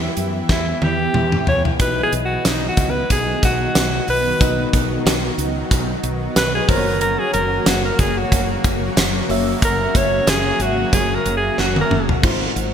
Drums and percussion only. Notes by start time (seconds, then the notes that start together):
0.17 closed hi-hat
0.49 kick, snare
0.82 high tom
1.14 mid tom
1.32 mid tom
1.47 floor tom
1.65 floor tom
1.80 kick, closed hi-hat
2.13 closed hi-hat
2.45 snare, closed hi-hat, tambourine
2.77 kick, closed hi-hat
3.10 kick, closed hi-hat
3.43 kick, closed hi-hat
3.75 snare, closed hi-hat, tambourine
4.08 open hi-hat
4.41 kick, closed hi-hat
4.73 kick, closed hi-hat
5.07 snare, closed hi-hat, tambourine
5.39 closed hi-hat
5.71 kick, closed hi-hat
6.04 closed hi-hat
6.36 snare, closed hi-hat, tambourine
6.68 kick, open hi-hat
7.01 closed hi-hat
7.34 closed hi-hat
7.66 snare, closed hi-hat, tambourine
7.99 kick, closed hi-hat
8.32 kick, closed hi-hat
8.64 kick, closed hi-hat
8.97 snare, closed hi-hat, tambourine
9.30 open hi-hat
9.62 kick, closed hi-hat
9.95 kick, closed hi-hat
10.27 snare, closed hi-hat, tambourine
10.60 closed hi-hat
10.93 kick, closed hi-hat
11.26 closed hi-hat
11.58 snare
11.76 high tom
11.91 mid tom
12.09 floor tom
12.23 kick, crash
12.56 closed hi-hat